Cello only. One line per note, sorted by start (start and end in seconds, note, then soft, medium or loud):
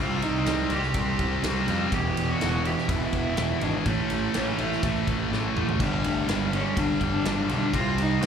0.00 0.23 F4 medium
0.22 0.71 D#4 loud
0.71 1.64 G4 loud
1.93 2.32 G4 loud
2.30 2.68 F#4 loud
2.66 2.91 G4 loud
2.90 3.14 E4 medium
3.15 3.64 E4 loud
3.63 3.89 D4 medium
3.88 4.35 C#4 medium
4.36 4.61 C#4 medium
4.59 5.32 E4 medium
5.81 6.03 B3 medium
6.07 6.28 A3 medium
6.30 6.56 B3 medium
6.55 6.81 C#4 medium
6.79 7.02 D4 medium
7.03 7.47 D4 loud
7.52 7.73 D4 loud
7.77 7.98 F4 loud
8.01 8.26 D#4 medium